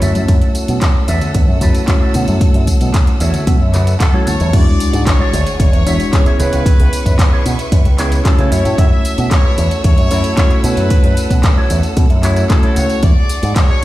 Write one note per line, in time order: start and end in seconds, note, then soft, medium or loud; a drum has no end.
0.00 0.11 F#2 loud
0.00 1.58 A3 medium
0.00 1.58 C#4 medium
0.00 1.58 E4 medium
0.00 1.59 F#4 medium
0.00 0.77 F#4 medium
0.00 0.77 A4 medium
0.00 4.50 A4 medium
0.00 1.59 C#5 loud
0.00 0.77 E5 loud
0.00 4.50 F#5 medium
0.00 4.49 E6 medium
0.00 open hi-hat loud
0.00 tambourine medium
0.00 low conga medium
0.15 0.25 F#2 medium
0.15 closed hi-hat soft
0.15 tambourine soft
0.15 high conga medium
0.28 0.38 F#2 loud
0.28 kick loud
0.28 closed hi-hat medium
0.28 tambourine soft
0.42 closed hi-hat soft
0.55 open hi-hat medium
0.55 tambourine medium
0.68 0.78 B2 medium
0.68 closed hi-hat medium
0.68 tambourine soft
0.68 high conga medium
0.82 kick loud
0.82 clap loud
0.82 closed hi-hat medium
0.82 tambourine soft
0.95 muted clean electric guitar stroke medium
1.08 1.18 E2 medium
1.08 1.35 F#4 medium
1.08 1.35 A4 medium
1.08 1.35 E5 loud
1.08 open hi-hat loud
1.08 tambourine medium
1.21 closed hi-hat medium
1.21 tambourine soft
1.21 low conga medium
1.34 1.44 E2 medium
1.34 kick loud
1.34 closed hi-hat medium
1.34 tambourine soft
1.48 1.57 F#2 medium
1.48 high conga medium
1.61 1.70 F#2 medium
1.61 1.85 A3 medium
1.61 1.85 C#4 medium
1.61 1.85 E4 medium
1.61 1.85 F#4 medium
1.61 1.81 F#4 medium
1.61 1.81 A4 medium
1.61 1.81 B4 loud
1.61 1.85 C#5 medium
1.61 kick medium
1.61 open hi-hat loud
1.61 tambourine medium
1.61 low conga medium
1.75 closed hi-hat medium
1.75 tambourine soft
1.87 3.70 A3 loud
1.87 3.71 C#4 medium
1.87 3.71 E4 medium
1.87 3.71 F#4 medium
1.87 3.71 C#5 loud
1.87 kick loud
1.87 clap loud
1.87 closed hi-hat medium
1.87 tambourine soft
2.01 2.15 F#4 medium
2.01 2.15 A4 medium
2.01 2.15 E5 medium
2.14 2.24 B2 loud
2.14 open hi-hat loud
2.14 tambourine medium
2.14 low conga medium
2.28 2.40 F#2 loud
2.28 muted clean electric guitar stroke soft
2.28 closed hi-hat medium
2.28 tambourine soft
2.28 high conga medium
2.41 muted picked electric bass stroke soft
2.41 kick loud
2.41 closed hi-hat medium
2.41 tambourine soft
2.54 2.64 F#2 medium
2.54 open hi-hat medium
2.67 kick medium
2.67 open hi-hat medium
2.67 tambourine medium
2.81 2.90 B2 medium
2.81 closed hi-hat medium
2.81 tambourine soft
2.81 high conga medium
2.94 kick loud
2.94 clap loud
2.94 closed hi-hat medium
2.94 tambourine soft
3.07 muted clean electric guitar stroke medium
3.07 closed hi-hat soft
3.20 3.30 E2 medium
3.20 3.47 F#4 loud
3.20 3.47 A4 medium
3.20 3.46 C#5 medium
3.20 3.46 E5 loud
3.20 open hi-hat loud
3.20 tambourine medium
3.34 closed hi-hat medium
3.34 tambourine soft
3.34 low conga medium
3.47 3.56 B2 loud
3.47 3.97 E5 medium
3.47 kick loud
3.47 closed hi-hat medium
3.47 tambourine soft
3.47 high conga medium
3.61 3.94 F#2 medium
3.74 3.94 F#4 loud
3.74 3.94 A4 medium
3.74 3.94 B4 loud
3.74 clap medium
3.74 open hi-hat loud
3.74 tambourine medium
3.74 low conga medium
3.87 closed hi-hat medium
3.87 tambourine soft
4.00 4.25 A4 loud
4.00 4.25 F#5 medium
4.00 kick loud
4.00 clap loud
4.00 closed hi-hat medium
4.00 tambourine soft
4.13 4.24 A3 medium
4.13 4.24 C#4 medium
4.13 4.24 E4 medium
4.13 4.27 F#4 medium
4.13 4.24 F#4 medium
4.13 4.27 A4 medium
4.13 4.27 C#5 loud
4.13 4.24 C#5 loud
4.13 high conga medium
4.27 4.35 A3 medium
4.27 4.35 C#4 medium
4.27 4.35 E4 medium
4.27 4.35 F#4 medium
4.27 4.53 C#5 loud
4.27 4.35 F#5 medium
4.27 4.52 A5 medium
4.27 muted picked electric bass stroke soft
4.27 open hi-hat loud
4.27 tambourine medium
4.27 low conga loud
4.40 4.49 E2 loud
4.40 muted clean electric guitar stroke soft
4.40 closed hi-hat medium
4.40 tambourine soft
4.40 high conga medium
4.53 4.63 E2 loud
4.53 5.33 G#3 loud
4.53 5.33 D4 medium
4.53 6.38 D4 medium
4.53 5.33 E4 medium
4.53 5.33 F#4 medium
4.53 6.38 G#4 medium
4.53 5.06 D5 loud
4.53 6.38 F#5 medium
4.53 6.38 C#6 medium
4.53 5.34 C#6 loud
4.53 kick loud
4.53 closed hi-hat medium
4.53 crash loud
4.53 tambourine soft
4.53 sub drop medium
4.80 open hi-hat loud
4.80 tambourine medium
4.93 5.02 G#2 medium
4.93 muted clean electric guitar stroke loud
4.93 closed hi-hat medium
4.93 tambourine soft
5.06 5.57 C#5 loud
5.06 muted clean electric guitar stroke soft
5.06 kick loud
5.06 clap loud
5.06 closed hi-hat medium
5.06 tambourine soft
5.20 5.40 F#4 medium
5.20 5.40 G#4 medium
5.20 5.40 C#5 medium
5.20 5.40 D5 loud
5.33 5.42 D2 medium
5.33 open hi-hat loud
5.33 tambourine medium
5.47 closed hi-hat medium
5.47 tambourine soft
5.58 5.69 D2 medium
5.58 6.35 C#5 loud
5.58 muted clean electric guitar stroke soft
5.58 kick loud
5.58 closed hi-hat medium
5.58 tambourine soft
5.73 5.82 E2 loud
5.73 closed hi-hat soft
5.86 5.96 E2 medium
5.86 6.10 G#3 medium
5.86 6.10 D4 medium
5.86 6.10 E4 medium
5.86 6.06 F#4 medium
5.86 6.10 F#4 medium
5.86 6.06 G#4 medium
5.86 6.06 C#5 loud
5.86 6.10 C#5 medium
5.86 6.06 E5 loud
5.86 open hi-hat loud
5.86 tambourine medium
6.00 closed hi-hat medium
6.00 tambourine soft
6.13 7.95 B3 medium
6.13 7.96 C#4 medium
6.13 7.96 E4 medium
6.13 7.96 G#4 medium
6.13 7.96 C#5 loud
6.13 kick loud
6.13 clap loud
6.13 closed hi-hat medium
6.13 tambourine soft
6.26 6.39 F#4 medium
6.26 6.38 G#4 medium
6.26 6.39 C#5 medium
6.26 6.38 E5 loud
6.26 closed hi-hat soft
6.38 6.49 C#2 loud
6.38 6.92 E4 medium
6.38 6.92 G#4 medium
6.38 7.45 B4 loud
6.38 8.50 B4 medium
6.38 6.92 B4 medium
6.38 6.93 C#5 loud
6.38 8.50 E5 medium
6.38 8.50 C#6 medium
6.38 open hi-hat loud
6.38 tambourine medium
6.53 6.65 C#2 loud
6.53 closed hi-hat medium
6.53 tambourine soft
6.66 kick loud
6.66 closed hi-hat medium
6.66 tambourine soft
6.79 6.88 C#2 medium
6.79 open hi-hat medium
6.93 open hi-hat loud
6.93 tambourine medium
7.05 7.15 F#2 medium
7.05 muted clean electric guitar stroke loud
7.05 kick medium
7.05 closed hi-hat medium
7.05 tambourine soft
7.19 muted clean electric guitar stroke soft
7.19 kick loud
7.19 clap loud
7.19 closed hi-hat medium
7.19 tambourine soft
7.31 7.52 E4 medium
7.31 7.52 G#4 medium
7.31 7.52 B4 medium
7.31 7.52 C#5 medium
7.46 7.55 B2 medium
7.46 open hi-hat loud
7.46 tambourine medium
7.59 closed hi-hat medium
7.59 tambourine soft
7.72 7.81 F#2 loud
7.72 muted clean electric guitar stroke soft
7.72 kick loud
7.72 closed hi-hat medium
7.72 tambourine soft
7.85 8.19 C#2 medium
7.85 closed hi-hat soft
7.98 8.22 B3 medium
7.98 8.22 C#4 medium
7.98 8.18 E4 loud
7.98 8.22 E4 medium
7.98 8.18 G#4 medium
7.98 8.22 G#4 medium
7.98 8.18 B4 medium
7.98 8.19 C#5 loud
7.98 8.22 C#5 medium
7.98 clap medium
7.98 open hi-hat loud
7.98 tambourine medium
8.12 closed hi-hat medium
8.12 tambourine soft
8.24 10.07 A3 loud
8.24 10.08 C#4 medium
8.24 10.08 E4 medium
8.24 10.08 F#4 medium
8.24 8.50 A4 loud
8.24 10.08 C#5 loud
8.24 kick loud
8.24 clap loud
8.24 closed hi-hat medium
8.24 tambourine soft
8.38 8.48 C#3 medium
8.38 8.50 E4 medium
8.38 8.52 G#4 medium
8.38 8.51 B4 medium
8.38 8.50 C#5 medium
8.38 closed hi-hat soft
8.51 8.61 F#2 medium
8.51 9.05 E4 medium
8.51 9.05 F#4 medium
8.51 9.05 A4 medium
8.51 12.99 A4 medium
8.51 9.05 C#5 medium
8.51 8.78 C#5 loud
8.51 13.84 F#5 medium
8.51 12.99 E6 medium
8.51 open hi-hat loud
8.51 tambourine medium
8.65 8.74 A2 medium
8.65 closed hi-hat soft
8.65 tambourine soft
8.78 8.87 F#2 loud
8.78 9.31 E5 loud
8.78 kick loud
8.78 closed hi-hat medium
8.78 tambourine soft
9.05 open hi-hat loud
9.05 tambourine medium
9.18 9.27 B2 medium
9.18 muted clean electric guitar stroke loud
9.18 closed hi-hat medium
9.18 tambourine soft
9.31 9.83 C#5 loud
9.31 kick loud
9.31 clap loud
9.31 closed hi-hat medium
9.31 tambourine soft
9.44 9.64 E4 medium
9.44 9.64 F#4 medium
9.44 9.65 A4 medium
9.44 9.65 B4 medium
9.58 9.67 E2 medium
9.58 open hi-hat loud
9.58 tambourine medium
9.71 closed hi-hat soft
9.71 tambourine soft
9.84 9.93 E2 medium
9.84 10.60 C#5 loud
9.84 kick loud
9.84 closed hi-hat medium
9.84 tambourine soft
9.98 10.07 F#2 loud
9.98 closed hi-hat soft
10.10 10.20 F#2 medium
10.10 10.34 A3 medium
10.10 10.34 C#4 medium
10.10 10.31 E4 loud
10.10 10.34 E4 medium
10.10 10.35 F#4 medium
10.10 10.31 F#4 medium
10.10 10.31 A4 medium
10.10 10.31 C#5 loud
10.10 10.35 C#5 medium
10.10 open hi-hat loud
10.10 tambourine medium
10.24 closed hi-hat medium
10.24 tambourine soft
10.36 12.20 A3 medium
10.36 12.20 C#4 medium
10.36 12.20 E4 medium
10.36 12.20 F#4 medium
10.36 12.21 C#5 loud
10.36 kick loud
10.36 clap loud
10.36 closed hi-hat medium
10.36 tambourine soft
10.50 10.90 E4 medium
10.50 10.91 F#4 medium
10.50 10.91 A4 medium
10.50 10.91 C#5 loud
10.50 closed hi-hat soft
10.64 10.73 B2 loud
10.64 11.66 B4 loud
10.64 open hi-hat loud
10.64 tambourine medium
10.77 10.90 F#2 loud
10.77 closed hi-hat medium
10.77 tambourine soft
10.90 muted picked electric bass stroke soft
10.90 kick loud
10.90 closed hi-hat medium
10.90 tambourine soft
11.04 11.13 F#2 medium
11.04 open hi-hat medium
11.17 open hi-hat loud
11.17 tambourine medium
11.30 11.40 B2 medium
11.30 muted clean electric guitar stroke loud
11.30 kick medium
11.30 closed hi-hat medium
11.30 tambourine soft
11.43 kick loud
11.43 clap loud
11.43 closed hi-hat medium
11.43 tambourine soft
11.56 11.77 E4 medium
11.56 11.77 F#4 medium
11.56 11.77 A4 medium
11.56 11.77 C#5 loud
11.70 11.79 E2 medium
11.70 open hi-hat loud
11.70 tambourine medium
11.83 closed hi-hat soft
11.83 tambourine soft
11.96 12.06 B2 loud
11.96 muted clean electric guitar stroke soft
11.96 kick loud
11.96 closed hi-hat medium
11.96 tambourine soft
12.10 12.43 F#2 loud
12.10 closed hi-hat soft
12.22 12.46 A3 medium
12.22 12.47 C#4 medium
12.22 12.43 E4 loud
12.22 12.47 E4 medium
12.22 12.47 F#4 medium
12.22 12.43 F#4 medium
12.22 12.43 A4 medium
12.22 12.43 C#5 loud
12.22 12.47 C#5 medium
12.22 clap medium
12.22 open hi-hat loud
12.22 tambourine medium
12.36 closed hi-hat medium
12.36 tambourine soft
12.50 13.01 A3 medium
12.50 13.01 C#4 medium
12.50 13.02 E4 medium
12.50 13.02 F#4 medium
12.50 12.75 A4 medium
12.50 12.62 C#5 medium
12.50 13.02 C#5 loud
12.50 kick loud
12.50 clap loud
12.50 closed hi-hat medium
12.50 tambourine soft
12.62 12.76 E4 medium
12.62 13.03 F#4 medium
12.62 13.03 A4 medium
12.62 13.03 C#5 medium
12.62 closed hi-hat soft
12.76 12.86 C#2 medium
12.76 13.03 C#5 loud
12.76 13.01 F#5 medium
12.76 open hi-hat loud
12.76 tambourine medium
12.90 closed hi-hat soft
12.90 tambourine soft
13.03 13.12 E2 loud
13.03 13.84 D4 medium
13.03 13.84 G#4 medium
13.03 13.56 D5 loud
13.03 13.84 C#6 medium
13.03 kick loud
13.03 closed hi-hat medium
13.03 tambourine soft
13.29 open hi-hat loud
13.29 tambourine medium
13.42 13.52 G#2 medium
13.42 muted clean electric guitar stroke loud
13.42 closed hi-hat medium
13.42 tambourine soft
13.56 13.84 C#5 loud
13.56 muted clean electric guitar stroke soft
13.56 kick loud
13.56 clap loud
13.56 closed hi-hat medium
13.56 tambourine soft
13.69 13.84 D4 medium
13.69 13.84 F#4 medium
13.69 13.84 G#4 medium
13.69 13.84 C#5 medium